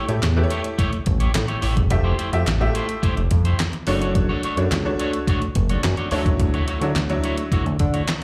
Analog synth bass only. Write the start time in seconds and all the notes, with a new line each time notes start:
0.09 A2
0.23 E2
1.07 A1
1.35 A2
1.63 A1
1.77 F#1
1.91 F1
2.33 F2
2.47 A1
3.17 F1
3.31 F2
3.87 F#1
4.57 F#2
4.71 C#2
5.56 F#1
5.83 F#2
6.12 D2
6.26 D#2
6.39 D2
6.81 D3
6.95 D2
7.66 D2
7.80 D3